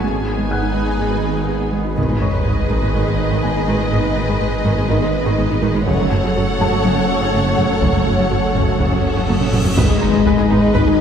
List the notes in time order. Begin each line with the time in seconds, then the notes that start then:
0.01 G#1 G#2 D#3 G#3 B3 D#4 G#4 B4 G#5
0.13 G#4
0.26 B3 G#4
0.38 G#3
0.50 G#2 B3 G#4 F#5 F#6
0.62 D#4
0.75 G#3 B3 G#4
0.99 G#2 G#3 B3 G#4
1.12 D#4
1.23 B3 G#4
1.36 G#3
1.48 G#2 B3 G#4
1.60 B3
1.72 G#3 B3 G#4
1.85 D#4
1.96 G#1 G#2 D#3 G#3 B3 D#4 G#4 B4 D#5, taiko, sub drop
2.09 G#2 G#3 B3
2.21 G#1 G#2 B3 G#4 C#5 C#6
2.33 G#2 D#3 G#3
2.45 G#1 G#2 G#3 G#4
2.70 G#1 G#2 D#3 G#3, taiko
2.82 G#2 G#3 B3
2.94 G#1 G#2 D#3 G#3 B3 D#4
3.06 G#2 G#3 G#4
3.31 G#2 D#3 G#3
3.43 G#1 G#2 G#3 B3 G#5
3.55 G#2 B3 D#4
3.67 G#1 G#2 D#3 G#3
3.79 G#2 G#3 D#4
3.92 G#1 G#2 D#3 G#3 B3 D#4
4.04 G#2 G#3 B3
4.15 G#1 G#2 B3 G#4
4.28 G#2 D#3 G#3
4.40 G#1 G#2 G#3 G#4
4.65 G#1 G#2 D#3 G#3
4.77 G#2 G#3 B3
4.89 G#1 G#2 D#3 G#3 B3 D#4 D#5
5.01 G#2 G#3 G#4
5.26 G#2 D#3 G#3
5.38 G#1 G#2 G#3 B3
5.50 G#2 B3 D#4
5.62 G#1 G#2 D#3 G#3
5.75 G#2 G#3 D#4
5.87 F#1 F#2 C#3 F#3 A3 C#4 A4 C#5 F#5, taiko
5.99 F#2 F#3 A3
6.11 F#1 F#2 A3 F#4
6.24 F#2 C#3 F#3
6.36 F#1 F#2 F#3 F#4
6.60 F#1 F#2 C#3 F#3 A4 A5
6.72 F#2 F#3 A3
6.85 F#1 F#2 C#3 F#3 A3 C#4
6.97 F#2 F#3 F#4
7.21 F#2 C#3 F#3
7.33 F#1 F#2 F#3 A3
7.45 F#2 A3 C#4
7.57 F#1 F#2 C#3 F#3
7.70 F#2 F#3 C#4
7.82 F#1 F#2 C#3 F#3 A3 C#4, taiko, cymbal swell
7.94 F#2 F#3 A3
8.06 F#1 F#2 A3 F#4
8.19 F#2 C#3 F#3
8.31 F#1 F#2 F#3 F#4
8.55 F#1 F#2 C#3 F#3, taiko
8.67 F#2 F#3 A3
8.79 F#1 F#2 C#3 F#3 A3 C#4, taiko
8.92 F#2 F#3 F#4
9.16 F#2 C#3 F#3
9.28 F#1 F#2 F#3 A3, taiko high
9.40 F#2 A3 C#4, taiko low-mid
9.52 F#1 F#2 C#3 F#3, taiko low-mid
9.64 F#2 F#3 C#4, taiko low
9.77 G#1 G#2 D#3 G#3 D#4 B4 D#5, taiko, impact
9.89 G#2 G#4
10.01 G#1 G#2 D#4, taiko mid
10.13 G#2 D#4 G#4
10.25 G#1 G#2 G#3 G#4 B4 G#5, taiko
10.38 G#2 G#4
10.50 G#1 G#2 B3 D#4
10.75 G#1 G#2 G#3 D#4 B4, taiko
10.87 G#2 D#4 G#4